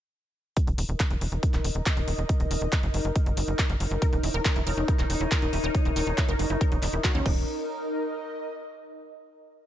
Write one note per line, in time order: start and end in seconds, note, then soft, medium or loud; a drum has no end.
0.57 7.25 D#4 medium
0.57 kick loud
0.57 closed hi-hat medium
0.66 0.74 D#1 medium
0.66 7.26 A#4 medium
0.66 closed hi-hat soft
0.78 0.85 D#1 loud
0.78 open hi-hat loud
0.89 0.96 D#1 medium
0.89 closed hi-hat soft
1.00 kick loud
1.00 clap loud
1.00 closed hi-hat medium
1.11 1.18 E1 medium
1.11 closed hi-hat soft
1.21 1.28 E1 loud
1.21 4.12 D#5 medium
1.21 open hi-hat medium
1.32 1.39 E1 medium
1.32 closed hi-hat soft
1.43 kick loud
1.43 closed hi-hat loud
1.54 1.61 D#1 medium
1.54 clap soft
1.54 closed hi-hat soft
1.65 1.71 D#1 loud
1.65 open hi-hat loud
1.75 1.82 D#1 medium
1.75 closed hi-hat soft
1.86 kick loud
1.86 clap loud
1.86 closed hi-hat medium
1.97 2.04 D#1 medium
1.97 closed hi-hat soft
2.08 2.15 D#1 loud
2.08 open hi-hat medium
2.18 2.25 D#1 medium
2.18 closed hi-hat soft
2.29 kick loud
2.29 closed hi-hat medium
2.40 2.47 D#1 medium
2.40 closed hi-hat soft
2.51 2.58 D#1 loud
2.51 open hi-hat loud
2.62 2.69 D#1 medium
2.72 kick loud
2.72 clap loud
2.72 closed hi-hat medium
2.83 2.90 F#1 medium
2.83 closed hi-hat soft
2.94 3.01 F#1 loud
2.94 open hi-hat medium
3.05 3.12 F#1 medium
3.05 closed hi-hat soft
3.16 kick loud
3.16 closed hi-hat medium
3.26 3.33 F#1 medium
3.26 closed hi-hat soft
3.37 3.44 F#1 loud
3.37 open hi-hat loud
3.48 3.55 F#1 medium
3.48 closed hi-hat soft
3.59 kick loud
3.59 clap loud
3.59 closed hi-hat medium
3.70 3.76 F#1 medium
3.70 closed hi-hat soft
3.80 3.87 F#1 loud
3.80 open hi-hat medium
3.91 3.98 F#1 loud
3.91 closed hi-hat soft
3.99 7.26 D#4 medium
3.99 4.05 A#4 loud
3.99 7.26 C#5 loud
3.99 kick loud
3.99 closed hi-hat medium
4.13 4.20 D#1 medium
4.13 4.18 D#4 medium
4.13 closed hi-hat soft
4.23 4.30 D#1 loud
4.23 4.28 E4 medium
4.23 open hi-hat loud
4.34 4.41 D#1 medium
4.34 4.37 A#4 loud
4.34 closed hi-hat soft
4.45 4.50 D#4 medium
4.45 kick loud
4.45 clap loud
4.45 closed hi-hat medium
4.56 4.63 E1 medium
4.56 4.61 E4 medium
4.56 closed hi-hat soft
4.67 4.74 E1 loud
4.67 4.70 A#4 loud
4.67 open hi-hat medium
4.77 4.84 E1 medium
4.77 4.82 D#4 medium
4.77 closed hi-hat soft
4.88 4.93 E4 medium
4.88 kick loud
4.88 closed hi-hat medium
4.99 5.06 D#1 medium
4.99 5.02 A#4 loud
4.99 clap soft
4.99 closed hi-hat soft
5.10 5.17 D#1 loud
5.10 5.15 D#4 medium
5.10 open hi-hat loud
5.21 5.28 D#1 medium
5.21 5.26 E4 medium
5.21 closed hi-hat soft
5.31 5.34 A#4 loud
5.31 kick loud
5.31 clap loud
5.31 closed hi-hat medium
5.42 5.49 D#1 medium
5.42 5.47 D#4 medium
5.42 closed hi-hat soft
5.53 5.60 D#1 loud
5.53 5.58 E4 medium
5.53 open hi-hat medium
5.64 5.71 D#1 medium
5.64 5.67 A#4 loud
5.64 closed hi-hat soft
5.75 5.80 D#4 medium
5.75 kick loud
5.75 closed hi-hat medium
5.85 5.92 D#1 medium
5.85 5.90 E4 medium
5.85 closed hi-hat soft
5.96 6.03 D#1 loud
5.96 5.99 A#4 loud
5.96 open hi-hat loud
6.07 6.14 D#1 medium
6.07 6.12 D#4 medium
6.07 closed hi-hat soft
6.18 6.23 E4 medium
6.18 kick loud
6.18 clap loud
6.18 closed hi-hat medium
6.29 6.35 F#1 medium
6.29 6.32 A#4 loud
6.29 closed hi-hat soft
6.39 6.46 F#1 loud
6.39 6.44 D#4 medium
6.39 open hi-hat medium
6.50 6.57 F#1 medium
6.50 6.55 E4 medium
6.50 closed hi-hat soft
6.61 6.64 A#4 loud
6.61 kick loud
6.61 closed hi-hat medium
6.72 6.79 D#1 medium
6.72 6.77 D#4 medium
6.72 closed hi-hat soft
6.83 6.89 D#1 loud
6.83 6.87 D#4 medium
6.83 clap soft
6.83 open hi-hat loud
6.93 7.00 D#1 medium
6.93 6.98 E4 medium
7.04 7.11 F#4 loud
7.04 kick loud
7.04 clap loud
7.04 closed hi-hat medium
7.15 7.22 D#2 medium
7.15 7.22 C#4 loud
7.15 closed hi-hat soft
7.26 7.46 D#1 medium
7.26 8.94 D#4 medium
7.26 7.46 D#4 medium
7.26 kick loud
7.26 crash medium
7.32 8.94 A#4 medium
7.60 9.16 D#5 medium